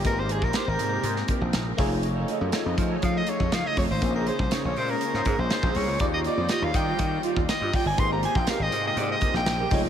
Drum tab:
HH |x-x-x-x-x-x-x-o-|x-x-x-x-x-x-x-o-|x-x-x-o-x-x-x-o-|x-x-x-x-x-x-x-o-|
SD |----o----o--o---|----o-------o---|----o----o--o---|----o-------o---|
BD |o--o------o---o-|------o-o--o--o-|o--o------o--o--|o-----o-o--o--o-|

HH |x-x-x-x-x-x-x-o-|
SD |----o------oo---|
BD |o--o------o---o-|